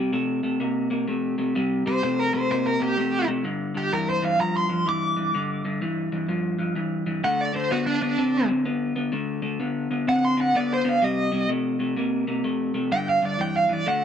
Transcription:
0.00 0.11 C3 medium
0.00 0.11 G3 medium
0.13 0.40 C3 medium
0.13 0.40 A3 medium
0.43 0.59 C3 medium
0.43 0.59 A3 medium
0.60 0.87 C3 medium
0.60 0.88 A#3 medium
0.90 1.06 C3 medium
0.90 1.06 A#3 medium
1.08 1.35 C3 medium
1.08 1.35 A3 medium
1.38 1.53 C3 medium
1.38 1.54 A3 medium
1.55 1.83 C3 medium
1.55 1.83 G3 loud
1.86 2.01 C3 medium
1.86 2.01 G3 medium
1.86 2.03 C5 medium
2.03 2.30 C3 medium
2.03 2.30 A3 medium
2.03 2.19 C5 medium
2.19 2.34 A#4 medium
2.33 2.48 C3 medium
2.33 2.49 A3 medium
2.33 2.50 C5 medium
2.50 2.77 C3 medium
2.50 2.78 A#3 medium
2.50 2.66 C5 medium
2.67 2.82 A#4 medium
2.80 2.96 C3 medium
2.80 2.96 A#3 medium
2.80 3.28 G4 medium
2.97 3.25 C3 medium
2.97 3.25 A3 medium
3.27 3.43 C3 medium
3.27 3.43 A3 medium
3.44 3.72 G2 medium
3.44 3.72 D3 medium
3.75 3.90 G2 medium
3.75 3.91 D3 medium
3.75 3.92 G4 medium
3.92 4.19 G2 medium
3.92 4.20 E3 medium
3.92 4.08 A#4 medium
4.09 4.24 C5 medium
4.22 4.38 G2 medium
4.22 4.38 E3 medium
4.22 4.40 F5 medium
4.39 4.67 G2 medium
4.39 4.67 F3 medium
4.39 4.56 A#5 medium
4.57 4.87 C6 medium
4.69 4.84 G2 medium
4.69 4.85 F3 medium
4.86 5.14 G2 medium
4.86 5.14 E3 medium
4.86 6.26 D6 medium
5.16 5.32 G2 medium
5.16 5.32 E3 medium
5.34 5.61 G2 medium
5.34 5.62 D3 medium
5.65 5.80 G2 medium
5.65 5.80 D3 medium
5.81 6.09 G2 medium
5.81 6.09 E3 medium
6.12 6.27 G2 medium
6.12 6.28 E3 medium
6.29 6.56 G2 medium
6.29 6.56 F3 medium
6.59 6.74 G2 medium
6.59 6.75 F3 medium
6.76 7.03 G2 medium
6.76 7.03 E3 medium
7.06 7.22 G2 medium
7.06 7.22 E3 medium
7.24 7.51 D3 medium
7.24 7.51 A3 medium
7.24 7.39 F#5 medium
7.41 7.56 D5 medium
7.53 7.69 D3 medium
7.53 7.69 A3 medium
7.53 7.71 C5 medium
7.71 7.98 D3 medium
7.71 7.98 B3 medium
7.71 7.86 F#4 medium
7.86 8.01 D4 medium
8.01 8.17 D3 medium
8.01 8.17 B3 medium
8.01 8.48 D4 medium
8.18 8.45 D3 medium
8.18 8.46 C4 medium
8.48 8.64 D3 medium
8.48 8.64 C4 medium
8.65 8.93 D3 medium
8.65 8.93 B3 medium
8.96 9.11 D3 medium
8.96 9.11 B3 medium
9.12 9.40 D3 medium
9.12 9.40 A3 medium
9.42 9.58 D3 medium
9.42 9.58 A3 medium
9.60 9.87 D3 medium
9.60 9.88 B3 medium
9.91 10.06 D3 medium
9.91 10.06 B3 medium
10.07 10.35 D3 medium
10.07 10.35 C4 medium
10.07 10.24 F#5 medium
10.25 10.39 C6 medium
10.37 10.53 D3 medium
10.37 10.53 C4 medium
10.41 10.56 F#5 medium
10.54 10.82 D3 medium
10.54 10.82 B3 medium
10.54 10.71 D5 medium
10.74 10.88 C5 medium
10.84 11.00 D3 medium
10.84 11.01 B3 medium
10.89 11.04 F5 medium
11.02 11.29 C3 medium
11.02 11.29 G3 medium
11.02 11.49 D#5 loud
11.32 11.48 C3 medium
11.32 11.48 G3 medium
11.49 11.77 C3 medium
11.49 11.77 A3 medium
11.79 11.95 C3 medium
11.79 11.95 A3 medium
11.97 12.24 C3 medium
11.97 12.24 A#3 medium
12.27 12.43 C3 medium
12.27 12.43 A#3 medium
12.44 12.71 C3 medium
12.44 12.72 A3 medium
12.74 12.90 C3 medium
12.74 12.90 A3 medium
12.91 13.19 G2 medium
12.91 13.19 D3 medium
12.91 13.07 G5 medium
13.09 13.24 F5 medium
13.22 13.37 G2 medium
13.22 13.38 D3 medium
13.22 13.40 D5 medium
13.39 13.66 G2 medium
13.39 13.66 E3 medium
13.39 13.55 G5 medium
13.57 13.73 F5 medium
13.69 13.85 G2 medium
13.69 13.85 E3 medium
13.73 13.87 D5 medium
13.86 14.04 D3 medium
13.86 14.04 A3 medium
13.86 14.03 F#5 medium

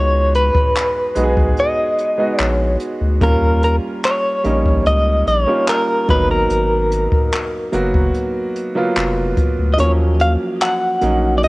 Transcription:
0.00 0.51 C#2 loud
0.00 1.05 G#3 medium
0.00 1.05 B3 medium
0.00 1.05 D#4 medium
0.00 1.06 F#4 medium
0.00 0.35 C#5 loud
0.34 1.59 B4 medium
0.34 closed hi-hat medium
0.55 kick medium
0.75 clap loud
0.75 closed hi-hat medium
1.15 1.54 B1 medium
1.15 2.11 G#3 medium
1.15 2.12 B3 medium
1.15 2.12 D#4 medium
1.15 1.23 F#4 medium
1.15 closed hi-hat medium
1.24 2.16 G#4 medium
1.37 kick medium
1.57 2.40 D#5 medium
1.57 closed hi-hat medium
1.98 closed hi-hat medium
2.18 3.14 G#3 medium
2.18 3.15 B3 medium
2.18 3.15 D#4 medium
2.18 3.15 F#4 medium
2.38 2.77 A#1 loud
2.38 2.78 C#5 medium
2.38 clap loud
2.38 closed hi-hat medium
2.80 closed hi-hat medium
3.01 3.20 D2 medium
3.21 3.79 D#2 medium
3.21 4.36 G3 medium
3.21 4.37 A#3 medium
3.21 4.37 C#4 medium
3.21 4.37 F4 medium
3.21 3.63 A#4 medium
3.21 kick loud
3.21 closed hi-hat medium
3.63 3.75 A#4 medium
3.63 closed hi-hat medium
4.03 4.87 C#5 medium
4.03 clap loud
4.03 closed hi-hat medium
4.44 4.82 A#1 medium
4.44 5.40 G3 medium
4.44 5.41 A#3 medium
4.44 5.41 C#4 medium
4.44 5.41 D#4 medium
4.44 closed hi-hat medium
4.66 kick medium
4.86 5.24 C#2 medium
4.86 5.27 D#5 loud
4.86 closed hi-hat medium
5.27 5.46 A#1 loud
5.27 5.69 C#5 medium
5.27 closed hi-hat medium
5.46 6.08 G3 medium
5.46 6.07 A#3 medium
5.46 6.09 C#4 medium
5.46 6.09 F4 medium
5.68 6.07 A#4 medium
5.68 clap loud
6.08 6.47 G#1 medium
6.08 7.62 F#3 medium
6.08 7.63 A#3 medium
6.08 7.63 B3 medium
6.08 7.63 D#4 medium
6.08 6.31 B4 medium
6.08 kick loud
6.08 closed hi-hat medium
6.31 8.73 A#4 medium
6.50 7.08 G#1 medium
6.50 closed hi-hat medium
6.92 closed hi-hat medium
7.12 kick medium
7.32 clap loud
7.32 closed hi-hat medium
7.72 8.11 F#1 medium
7.72 8.69 F#3 medium
7.72 8.69 A#3 medium
7.72 8.70 B3 medium
7.72 8.70 F#4 medium
7.72 closed hi-hat medium
7.94 kick medium
8.14 closed hi-hat medium
8.56 closed hi-hat medium
8.75 9.72 F#3 medium
8.75 9.72 A#3 medium
8.75 9.72 B3 medium
8.75 9.73 F4 medium
8.96 9.34 F1 loud
8.96 clap loud
8.96 closed hi-hat medium
9.37 kick medium
9.37 closed hi-hat medium
9.59 9.77 D2 medium
9.74 9.80 D#5 medium
9.78 10.37 D#2 loud
9.78 10.95 F3 medium
9.78 10.94 F#3 medium
9.78 10.94 A#3 medium
9.78 10.94 C#4 medium
9.78 9.91 C#5 medium
9.78 closed hi-hat medium
10.20 10.32 F5 medium
10.20 closed hi-hat medium
10.61 11.38 F#5 medium
10.61 clap loud
10.61 closed hi-hat medium
11.01 11.45 A#1 medium
11.01 11.48 F#3 medium
11.01 11.48 A#3 medium
11.01 11.48 C#4 medium
11.01 11.48 D#4 medium
11.01 closed hi-hat medium
11.38 11.44 D5 medium
11.43 11.48 C#2 medium
11.43 11.48 D#5 medium
11.43 closed hi-hat medium

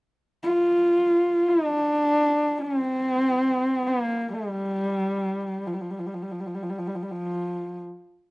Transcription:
0.43 1.50 F4 medium
1.49 2.64 D4 medium
2.62 3.88 C4 medium
3.86 4.32 A#3 medium
4.33 5.68 G3 medium
5.66 5.75 F3 medium
5.74 5.83 G3 medium
5.81 5.92 F3 soft
5.90 6.00 G3 soft
5.99 6.07 F3 soft
6.06 6.16 G3 soft
6.14 6.24 F3 soft
6.22 6.33 G3 medium
6.31 6.41 F3 soft
6.40 6.48 G3 soft
6.46 6.56 F3 soft
6.54 6.64 G3 medium
6.63 6.71 F3 medium
6.70 6.80 G3 medium
6.79 6.89 F3 medium
6.87 6.97 G3 medium
6.95 7.04 F3 soft
7.02 7.13 G3 soft
7.11 7.80 F3 medium

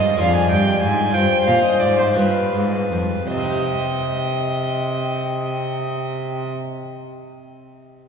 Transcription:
0.00 0.18 G2 medium
0.00 0.21 G2 medium
0.00 0.17 F4 soft
0.00 0.18 G#4 soft
0.00 0.20 D#5 medium
0.00 0.23 D#5 medium
0.16 1.09 D4 soft
0.16 1.10 F4 soft
0.16 1.11 G#4 soft
0.21 0.48 F2 soft
0.21 0.53 F2 medium
0.21 1.14 D5 medium
0.21 0.35 F5 medium
0.36 0.50 G#5 medium
0.51 0.80 G2 soft
0.51 0.82 G2 medium
0.51 0.81 G5 medium
0.81 1.11 G#2 medium
0.81 1.14 G#2 medium
0.81 1.15 G#5 medium
1.10 1.44 D4 soft
1.10 2.12 F4 soft
1.10 2.13 C5 soft
1.14 1.44 G2 medium
1.14 1.23 G2 medium
1.14 2.18 C5 medium
1.14 1.46 G5 medium
1.46 1.56 A#2 medium
1.46 1.79 A#2 soft
1.46 1.63 F5 medium
1.64 1.81 D#5 medium
1.80 2.13 G#2 soft
1.80 2.19 G#2 medium
1.80 1.98 D5 medium
1.99 2.06 C5 medium
2.13 2.50 D4 soft
2.13 3.27 F4 soft
2.13 3.27 G4 soft
2.13 3.28 B4 medium
2.17 2.50 G2 soft
2.17 2.53 G2 medium
2.17 2.73 B4 medium
2.53 2.91 G#2 medium
2.53 2.88 G#2 soft
2.91 3.27 F2 soft
2.91 3.30 F2 medium
3.30 6.51 C3 soft
3.30 6.52 D#5 medium
3.30 6.52 G5 medium
3.38 6.58 C4 soft
3.45 6.65 D#4 soft
3.52 6.72 G4 soft
3.58 6.79 D#5 soft

